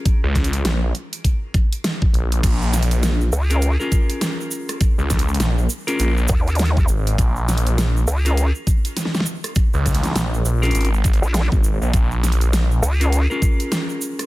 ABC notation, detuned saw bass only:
X:1
M:4/4
L:1/16
Q:"Swing 16ths" 1/4=101
K:Bbm
V:1 name="Detuned saw bass" clef=bass
z D,,3 B,,,2 z8 B,,,2 | B,,,6 z8 z2 | z D,,3 B,,,2 z2 B,,,2 z4 A,,,2 | B,,,6 z8 z2 |
z D,,3 B,,,2 B,,,2 A,,,3 z2 A,,,2 B,,, | B,,,6 z8 z2 |]